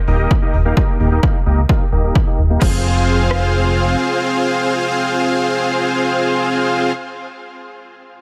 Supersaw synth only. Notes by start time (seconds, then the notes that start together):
0.08 A#3 D#4 G4 A#4 D#5
0.19 A#3 D#4 G4 A#4 D#5
0.42 A#3 D#4 G4 A#4 D#5
0.65 A#3 D#4 G4 A#4 F5
0.77 D#4 G4 D#5
1.00 A#3 D#4 G4 A#4 G5
1.11 A#3 D#4 G4 A#4 D#5
1.23 A#3 D#4 G4 A#4 F5
1.46 A#3 D#4 G4 A#4 D#5
1.69 A#3 D#4 G4 A#4 F5
1.92 A#3 D#4 G4 A#4 D#5
2.04 A#3 D#4 G4 A#4 D#5
2.27 A#3 D#4 G4 A#4 D#5
2.50 A#3 D#4 G4 A#4 F5
2.62 C4 F4 G#4 C5 F5